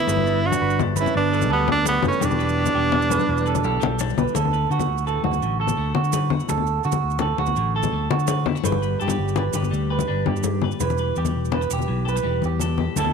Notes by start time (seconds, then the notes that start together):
Already playing: B3 E4
0.07 G1 G3 B4, high conga, maracas
0.17 low conga
0.26 D4, low conga, maracas
0.44 D4 F#4
0.52 high conga, low conga, maracas
0.61 G1 B4
0.70 maracas
0.79 D4, low conga, maracas
0.96 B4, high conga, maracas
1.00 C#4 E4
1.06 low conga, maracas
1.14 G1 G3 B3 D4
1.33 A4 B4, low conga, maracas
1.42 high conga, low conga, maracas
1.50 D2 G3 B3 A4 B4
1.67 D2 B3, low conga
1.71 B3 D4
1.85 G3 B3 D4, high conga, low conga, maracas
2.03 F#1 A3 B4, low conga, maracas
2.08 C#4
2.13 maracas
2.20 E1 E3 G4, high conga, maracas
2.24 B3 D4
2.31 low conga, maracas
2.39 B4, maracas
2.49 maracas
2.58 G4
2.66 high conga, low conga, maracas
2.74 E1 G3 G4, low conga
2.92 D4, low conga
3.02 maracas
3.10 B4, high conga, maracas
3.19 low conga, maracas
3.27 E1 E3
3.37 low conga, maracas
3.46 A4 B4, maracas
3.55 high conga, low conga, maracas
3.64 B1 G4 A4, maracas
3.73 low conga
3.80 B1 G3, low conga, maracas
3.99 D4, high conga, low conga, maracas
4.09 low conga, maracas
4.18 B1 B4, low conga, maracas
4.28 maracas
4.35 D2 D3 A4, high conga, maracas
4.45 low conga
4.53 B4, maracas
4.70 D3 A3 F#4, low conga, maracas
4.79 high conga, low conga, maracas
4.88 D2
4.98 maracas
5.06 A2 A4 B4, maracas
5.23 D2 F#4, high conga, low conga
5.31 low conga, maracas
5.40 A1 D3, low conga, maracas
5.60 A4
5.67 high conga, low conga, maracas
5.77 D2 A3 F#4
5.95 D3 F#4, low conga
6.04 maracas
6.13 A2 B4, high conga, maracas
6.30 F#4, low conga
6.40 maracas
6.49 D2 A4, muted clean electric guitar stroke, high conga, maracas
6.58 low conga
6.67 maracas
6.84 D3 F#4, muted clean electric guitar stroke, low conga, maracas
6.92 high conga, low conga, maracas
7.03 D2
7.10 maracas
7.19 A2 A4 B4, low conga, maracas
7.38 D2 F#4, high conga, low conga
7.46 low conga, maracas
7.56 A1 D3, low conga, maracas
7.76 A4
7.83 high conga, low conga, maracas
7.92 D2 A3
8.11 D3 F#4, low conga
8.19 maracas
8.27 A2 B4, high conga, maracas
8.45 E4, low conga
8.55 F#4, maracas
8.64 G1 G3 B4, high conga, maracas
8.72 low conga
8.82 B4, maracas
8.99 G2 D4 G4 A4, low conga, maracas
9.08 B4, high conga, low conga, maracas
9.18 G1
9.28 maracas
9.36 D3 B4 D5, low conga, maracas
9.53 G1 G4 B4, high conga, low conga, maracas
9.63 low conga, maracas
9.71 D2 G3, low conga, maracas
9.90 B4
9.99 high conga, low conga, maracas
10.08 G1 D4 B4
10.26 G2 G4, low conga
10.36 maracas
10.43 muted clean electric guitar stroke, high conga, maracas
10.62 B4, low conga
10.71 maracas
10.80 E1 E3 B4, high conga, low conga, maracas
10.90 low conga, maracas
10.98 B4, maracas
11.08 low conga
11.16 E2 G3 G4, low conga, maracas
11.25 high conga, low conga, maracas
11.35 E1
11.45 maracas
11.52 B2 A4 B4, low conga
11.61 B4, low conga, maracas
11.70 E1 G4, maracas
11.79 low conga, maracas
11.88 B1 E3, low conga
12.05 A4 B4, high conga, maracas
12.16 B4, maracas
12.23 E1 G3 G4, high conga
12.42 E2 G4, high conga, maracas
12.60 B2 A4, low conga, maracas
12.78 G4, low conga
12.96 D2 D3 A3 E4 F#4 A4, high conga, maracas
13.05 low conga